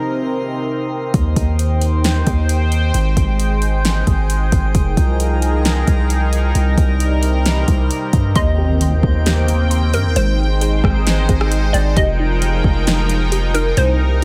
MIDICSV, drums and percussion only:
0, 0, Header, 1, 2, 480
1, 0, Start_track
1, 0, Key_signature, -3, "major"
1, 0, Tempo, 451128
1, 1212, Time_signature, 4, 2, 24, 8
1, 15152, End_track
2, 0, Start_track
2, 0, Title_t, "Drums"
2, 1213, Note_on_c, 9, 36, 112
2, 1213, Note_on_c, 9, 42, 78
2, 1319, Note_off_c, 9, 36, 0
2, 1319, Note_off_c, 9, 42, 0
2, 1451, Note_on_c, 9, 36, 87
2, 1452, Note_on_c, 9, 42, 72
2, 1558, Note_off_c, 9, 36, 0
2, 1558, Note_off_c, 9, 42, 0
2, 1694, Note_on_c, 9, 42, 72
2, 1800, Note_off_c, 9, 42, 0
2, 1931, Note_on_c, 9, 42, 58
2, 2038, Note_off_c, 9, 42, 0
2, 2175, Note_on_c, 9, 42, 76
2, 2180, Note_on_c, 9, 38, 114
2, 2281, Note_off_c, 9, 42, 0
2, 2286, Note_off_c, 9, 38, 0
2, 2411, Note_on_c, 9, 42, 61
2, 2413, Note_on_c, 9, 36, 81
2, 2518, Note_off_c, 9, 42, 0
2, 2519, Note_off_c, 9, 36, 0
2, 2653, Note_on_c, 9, 42, 82
2, 2759, Note_off_c, 9, 42, 0
2, 2893, Note_on_c, 9, 42, 66
2, 2999, Note_off_c, 9, 42, 0
2, 3131, Note_on_c, 9, 42, 81
2, 3238, Note_off_c, 9, 42, 0
2, 3371, Note_on_c, 9, 36, 88
2, 3371, Note_on_c, 9, 42, 71
2, 3477, Note_off_c, 9, 36, 0
2, 3478, Note_off_c, 9, 42, 0
2, 3613, Note_on_c, 9, 42, 70
2, 3719, Note_off_c, 9, 42, 0
2, 3850, Note_on_c, 9, 42, 59
2, 3956, Note_off_c, 9, 42, 0
2, 4094, Note_on_c, 9, 42, 75
2, 4099, Note_on_c, 9, 38, 111
2, 4200, Note_off_c, 9, 42, 0
2, 4206, Note_off_c, 9, 38, 0
2, 4332, Note_on_c, 9, 42, 60
2, 4333, Note_on_c, 9, 36, 82
2, 4438, Note_off_c, 9, 42, 0
2, 4439, Note_off_c, 9, 36, 0
2, 4573, Note_on_c, 9, 42, 78
2, 4679, Note_off_c, 9, 42, 0
2, 4812, Note_on_c, 9, 42, 65
2, 4813, Note_on_c, 9, 36, 90
2, 4919, Note_off_c, 9, 42, 0
2, 4920, Note_off_c, 9, 36, 0
2, 5051, Note_on_c, 9, 36, 109
2, 5051, Note_on_c, 9, 42, 78
2, 5157, Note_off_c, 9, 42, 0
2, 5158, Note_off_c, 9, 36, 0
2, 5290, Note_on_c, 9, 36, 85
2, 5291, Note_on_c, 9, 42, 73
2, 5397, Note_off_c, 9, 36, 0
2, 5397, Note_off_c, 9, 42, 0
2, 5532, Note_on_c, 9, 42, 74
2, 5639, Note_off_c, 9, 42, 0
2, 5769, Note_on_c, 9, 42, 61
2, 5876, Note_off_c, 9, 42, 0
2, 6013, Note_on_c, 9, 42, 76
2, 6018, Note_on_c, 9, 38, 109
2, 6119, Note_off_c, 9, 42, 0
2, 6124, Note_off_c, 9, 38, 0
2, 6251, Note_on_c, 9, 42, 61
2, 6252, Note_on_c, 9, 36, 82
2, 6357, Note_off_c, 9, 42, 0
2, 6358, Note_off_c, 9, 36, 0
2, 6492, Note_on_c, 9, 42, 80
2, 6598, Note_off_c, 9, 42, 0
2, 6732, Note_on_c, 9, 42, 68
2, 6838, Note_off_c, 9, 42, 0
2, 6970, Note_on_c, 9, 42, 77
2, 7077, Note_off_c, 9, 42, 0
2, 7210, Note_on_c, 9, 36, 90
2, 7210, Note_on_c, 9, 42, 68
2, 7316, Note_off_c, 9, 36, 0
2, 7316, Note_off_c, 9, 42, 0
2, 7452, Note_on_c, 9, 42, 73
2, 7558, Note_off_c, 9, 42, 0
2, 7689, Note_on_c, 9, 42, 62
2, 7795, Note_off_c, 9, 42, 0
2, 7933, Note_on_c, 9, 42, 77
2, 7939, Note_on_c, 9, 38, 115
2, 8040, Note_off_c, 9, 42, 0
2, 8045, Note_off_c, 9, 38, 0
2, 8171, Note_on_c, 9, 42, 62
2, 8172, Note_on_c, 9, 36, 78
2, 8277, Note_off_c, 9, 42, 0
2, 8278, Note_off_c, 9, 36, 0
2, 8412, Note_on_c, 9, 42, 77
2, 8518, Note_off_c, 9, 42, 0
2, 8652, Note_on_c, 9, 42, 66
2, 8653, Note_on_c, 9, 36, 85
2, 8758, Note_off_c, 9, 42, 0
2, 8759, Note_off_c, 9, 36, 0
2, 8890, Note_on_c, 9, 42, 81
2, 8891, Note_on_c, 9, 36, 109
2, 8997, Note_off_c, 9, 42, 0
2, 8998, Note_off_c, 9, 36, 0
2, 9372, Note_on_c, 9, 42, 75
2, 9479, Note_off_c, 9, 42, 0
2, 9610, Note_on_c, 9, 36, 93
2, 9717, Note_off_c, 9, 36, 0
2, 9854, Note_on_c, 9, 42, 82
2, 9859, Note_on_c, 9, 38, 123
2, 9961, Note_off_c, 9, 42, 0
2, 9966, Note_off_c, 9, 38, 0
2, 10091, Note_on_c, 9, 42, 63
2, 10197, Note_off_c, 9, 42, 0
2, 10332, Note_on_c, 9, 42, 81
2, 10439, Note_off_c, 9, 42, 0
2, 10571, Note_on_c, 9, 42, 66
2, 10678, Note_off_c, 9, 42, 0
2, 10811, Note_on_c, 9, 42, 83
2, 10917, Note_off_c, 9, 42, 0
2, 11294, Note_on_c, 9, 42, 74
2, 11400, Note_off_c, 9, 42, 0
2, 11532, Note_on_c, 9, 36, 92
2, 11541, Note_on_c, 9, 37, 93
2, 11638, Note_off_c, 9, 36, 0
2, 11647, Note_off_c, 9, 37, 0
2, 11775, Note_on_c, 9, 42, 77
2, 11780, Note_on_c, 9, 38, 118
2, 11881, Note_off_c, 9, 42, 0
2, 11886, Note_off_c, 9, 38, 0
2, 12011, Note_on_c, 9, 42, 58
2, 12013, Note_on_c, 9, 36, 83
2, 12118, Note_off_c, 9, 42, 0
2, 12120, Note_off_c, 9, 36, 0
2, 12139, Note_on_c, 9, 37, 100
2, 12245, Note_off_c, 9, 37, 0
2, 12253, Note_on_c, 9, 42, 80
2, 12359, Note_off_c, 9, 42, 0
2, 12494, Note_on_c, 9, 42, 67
2, 12600, Note_off_c, 9, 42, 0
2, 12732, Note_on_c, 9, 42, 81
2, 12733, Note_on_c, 9, 36, 113
2, 12839, Note_off_c, 9, 42, 0
2, 12840, Note_off_c, 9, 36, 0
2, 13214, Note_on_c, 9, 42, 75
2, 13320, Note_off_c, 9, 42, 0
2, 13452, Note_on_c, 9, 36, 90
2, 13559, Note_off_c, 9, 36, 0
2, 13695, Note_on_c, 9, 42, 82
2, 13700, Note_on_c, 9, 38, 117
2, 13802, Note_off_c, 9, 42, 0
2, 13807, Note_off_c, 9, 38, 0
2, 13933, Note_on_c, 9, 42, 63
2, 14039, Note_off_c, 9, 42, 0
2, 14173, Note_on_c, 9, 42, 84
2, 14280, Note_off_c, 9, 42, 0
2, 14413, Note_on_c, 9, 42, 70
2, 14520, Note_off_c, 9, 42, 0
2, 14652, Note_on_c, 9, 42, 77
2, 14759, Note_off_c, 9, 42, 0
2, 15152, End_track
0, 0, End_of_file